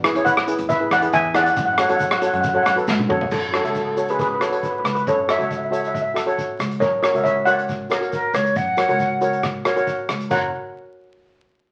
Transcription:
0.04 steel pan E4 G#4 B4, cross-stick, closed hi-hat, shaker
0.15 upright bass E2, steel pan E4 G#4 C#5, closed hi-hat
0.25 steel pan B4 F#5, kick, closed hi-hat, shaker
0.37 cross-stick
0.47 steel pan E4 G#4 B4, closed hi-hat, shaker
0.58 upright bass E2, closed hi-hat
0.69 steel pan B4 E5, kick, closed hi-hat, shaker
0.80 steel pan E4 G#4 B4
0.91 upright bass E2, steel pan D5 F#5, cross-stick, closed hi-hat, shaker
1.02 steel pan E4 G#4 B4, closed hi-hat
1.13 upright bass E2, steel pan E5 G#5, kick, closed hi-hat, shaker
1.34 steel pan E4 G#4 D5 F#5, cross-stick, closed hi-hat, shaker
1.43 steel pan F#5, closed hi-hat
1.50 steel pan F#5
1.56 upright bass F#2, steel pan F#5, kick, closed hi-hat, shaker
1.65 steel pan F#5
1.73 steel pan F#5
1.78 steel pan F#4 A4 C#5 F#5, cross-stick, closed hi-hat, shaker
1.89 upright bass F#2, steel pan F#4 A4 C#5 F#5, closed hi-hat
1.97 steel pan F#5, kick, closed hi-hat, shaker
2.03 steel pan F#5
2.11 steel pan F#5, cross-stick
2.18 steel pan F#4 A4 C#5 F#5, closed hi-hat, shaker
2.27 steel pan F#5
2.33 upright bass F#2, steel pan F#5, closed hi-hat
2.41 steel pan F#5, kick, closed hi-hat, shaker
2.49 steel pan F#5
2.54 steel pan F#4 A4 C#5 F#5
2.63 upright bass F#2, steel pan F#5, cross-stick, closed hi-hat, shaker
2.70 steel pan F#5
2.76 steel pan F#4 A4 B4, closed hi-hat
2.87 upright bass G#2, kick, snare, shaker
2.99 high tom
3.09 upright bass F#2, steel pan F#4 A4 C#5, mid tom
3.21 floor tom
3.31 upright bass F#2, steel pan F#4 A4, kick, crash, shaker
3.53 steel pan F#4 A4 C#5, cross-stick, closed hi-hat
3.61 upright bass C#2, steel pan F#4 A4 E5, closed hi-hat, shaker
3.69 steel pan A4
3.75 steel pan A4, kick, closed hi-hat, shaker
3.85 steel pan A4
3.92 steel pan A4
3.97 steel pan F#4 A4 C#5, closed hi-hat, shaker
4.08 steel pan G#4 B4, closed hi-hat, shaker
4.19 steel pan G#4 B4, kick, closed hi-hat, shaker
4.28 steel pan B4
4.35 steel pan B4
4.40 steel pan F#4 A4 B4 C#5, cross-stick, closed hi-hat, shaker
4.50 steel pan F#4 A4 B4 C#5, closed hi-hat
4.57 steel pan B4
4.63 steel pan B4, kick, closed hi-hat, shaker
4.72 steel pan B4
4.79 steel pan B4
4.84 upright bass C#2, steel pan B4, cross-stick, closed hi-hat, shaker
4.95 steel pan B4, closed hi-hat
5.07 upright bass F#2, steel pan A4 C#5, kick, closed hi-hat, shaker
5.28 steel pan F#4 A4 C#5 E5, cross-stick, closed hi-hat, shaker
5.37 upright bass C#2, steel pan F#4 A4 C#5 E5, closed hi-hat, shaker
5.44 steel pan E5
5.51 steel pan E5, kick, closed hi-hat, shaker
5.57 steel pan E5
5.65 steel pan E5
5.71 steel pan F#4 A4 C#5 E5, closed hi-hat, shaker
5.81 steel pan E5, closed hi-hat, shaker
5.88 steel pan E5
5.95 steel pan E5, kick, closed hi-hat, shaker
6.02 steel pan E5
6.14 steel pan F#4 A4 E5, cross-stick, closed hi-hat, shaker
6.26 steel pan F#4 A4 C#5, closed hi-hat
6.38 kick, closed hi-hat, shaker
6.59 upright bass C#2, cross-stick, closed hi-hat, shaker
6.71 closed hi-hat, shaker
6.80 upright bass F#2, steel pan A#4 C#5, kick, closed hi-hat, shaker
7.02 steel pan F#4 A#4 C#5, cross-stick, closed hi-hat, shaker
7.13 upright bass C#2, steel pan F#4 A#4 E5, closed hi-hat, shaker
7.24 steel pan C#5 E5, kick, closed hi-hat, shaker
7.45 steel pan F#4 A#4 C#5 D5 F#5, closed hi-hat, shaker
7.58 closed hi-hat, shaker
7.68 kick, closed hi-hat, shaker
7.90 steel pan F#4 A#4 C#5, flute A#4, cross-stick, closed hi-hat, shaker
8.01 steel pan F#4 A#4, closed hi-hat
8.12 flute A#4, kick, closed hi-hat, shaker
8.34 upright bass C#2, flute C#5, cross-stick, closed hi-hat, shaker
8.46 closed hi-hat
8.56 upright bass F#2, flute F#5, kick, closed hi-hat, shaker
8.77 steel pan F#4 A#4 C#5, cross-stick, closed hi-hat, shaker
8.88 upright bass C#2, steel pan F#4 A#4 C#5, closed hi-hat, shaker
8.99 kick, closed hi-hat, shaker
9.21 steel pan F#4 A#4 C#5, closed hi-hat, shaker
9.33 closed hi-hat, shaker
9.43 kick, cross-stick, closed hi-hat, shaker
9.65 steel pan F#4 A#4 C#5, cross-stick, closed hi-hat, shaker
9.76 steel pan F#4 A#4 C#5, closed hi-hat, shaker
9.87 kick, closed hi-hat, shaker
10.09 upright bass C#2, cross-stick, closed hi-hat, shaker
10.20 closed hi-hat, shaker
10.30 upright bass F#1, steel pan F#4 A#4 C#5 F#5, flute A#5, kick, crash, shaker

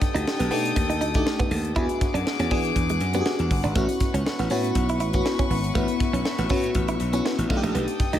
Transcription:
Already playing: fm electric piano A3 D4 D#4 G4 F#5, string section A4 G5 D#6
0.01 muted clean electric guitar stroke, kick, snare, closed hi-hat
0.15 slap bass D2, clean electric guitar D#4, closed hi-hat
0.26 muted clean electric guitar stroke, snare
0.39 slap bass B1, clean electric guitar B3, snare, closed hi-hat
0.51 slap bass B2, fm electric piano A3 D4 D#4 G4, clean electric guitar B3, open hi-hat
0.65 closed hi-hat
0.76 slap bass D#2, muted clean electric guitar stroke, kick, closed hi-hat
0.90 clean electric guitar D#4, closed hi-hat
1.01 slap bass D2, clean electric guitar D#4, closed hi-hat
1.14 fm electric piano A3 D4 D#4 G4, kick, closed hi-hat
1.26 muted clean electric guitar stroke, snare
1.39 clean electric guitar B3, kick, closed hi-hat
1.51 slap bass D#2, clean electric guitar A3, open hi-hat
1.65 closed hi-hat
1.76 slap bass E2, fm electric piano B3 D4 F#4 G#4, clean electric guitar E4, string section G#4 F#5 D6, kick, closed hi-hat
1.89 closed hi-hat
2.01 muted clean electric guitar stroke, kick, snare, closed hi-hat
2.14 slap bass F#2, clean electric guitar D4, closed hi-hat
2.26 muted clean electric guitar stroke, snare
2.39 slap bass E2, clean electric guitar C#4, snare, closed hi-hat
2.50 slap bass E3, fm electric piano B3 D4 F#4 G#4, clean electric guitar B3, kick, open hi-hat
2.65 closed hi-hat
2.76 slap bass E2, kick, closed hi-hat
2.89 clean electric guitar G#3, closed hi-hat
3.00 slap bass F#2, muted clean electric guitar stroke, closed hi-hat
3.13 fm electric piano B3 D4 F#4 G4, clean electric guitar B3, closed hi-hat
3.21 fm electric piano G#4
3.26 clean electric guitar B3, snare
3.39 slap bass E2, closed hi-hat
3.51 slap bass G1, muted clean electric guitar stroke, kick, open hi-hat
3.64 slap bass G#1, clean electric guitar D4, closed hi-hat
3.75 slap bass A1, clean electric guitar A3, fm electric piano B3 C#4 E4 F#4, string section B4 C#6, kick, closed hi-hat
3.89 closed hi-hat
4.00 muted clean electric guitar stroke, kick, snare, closed hi-hat
4.14 slap bass C#2, clean electric guitar C#4, closed hi-hat
4.26 muted clean electric guitar stroke, snare
4.39 slap bass A1, clean electric guitar B3, snare, closed hi-hat
4.50 slap bass A2, fm electric piano B3 C#4 E4 F#4, clean electric guitar C#4, open hi-hat
4.64 closed hi-hat
4.75 slap bass B1, muted clean electric guitar stroke, kick, closed hi-hat
4.89 clean electric guitar E4, closed hi-hat
5.00 slap bass A1, clean electric guitar E4, closed hi-hat
5.13 fm electric piano B3 C#4 E4 F#4, kick, closed hi-hat
5.25 muted clean electric guitar stroke, snare
5.39 clean electric guitar C#4, kick, closed hi-hat
5.50 slap bass G#1, clean electric guitar B3, open hi-hat
5.64 closed hi-hat
5.75 slap bass A1, clean electric guitar A3, fm electric piano B3 C#4 E4 F#4, string section E5, kick, closed hi-hat
5.88 closed hi-hat
6.00 muted clean electric guitar stroke, kick, snare, closed hi-hat
6.13 slap bass B1, clean electric guitar C#4, closed hi-hat
6.25 muted clean electric guitar stroke, snare
6.38 slap bass A1, clean electric guitar B3, snare, closed hi-hat
6.49 slap bass A2, fm electric piano B3 C#4 E4 F#4, clean electric guitar C#4, kick, open hi-hat
6.64 closed hi-hat
6.75 slap bass A1, kick, closed hi-hat
6.88 clean electric guitar E4, closed hi-hat
7.00 slap bass B1, muted clean electric guitar stroke, closed hi-hat
7.13 fm electric piano B3 C#4 E4 F#4, clean electric guitar C#4, closed hi-hat
7.25 clean electric guitar B3, snare
7.38 slap bass A1, closed hi-hat
7.50 slap bass B1, fm electric piano A3 D4 D#4 F4, string section A4 G5 D#6, muted clean electric guitar stroke, kick, crash
7.57 fm electric piano G4
7.64 slap bass A#1, clean electric guitar A3, closed hi-hat
7.75 slap bass B1, clean electric guitar B3, closed hi-hat
7.88 closed hi-hat
8.00 muted clean electric guitar stroke, kick, snare, closed hi-hat
8.13 slap bass D2, clean electric guitar D#4, closed hi-hat

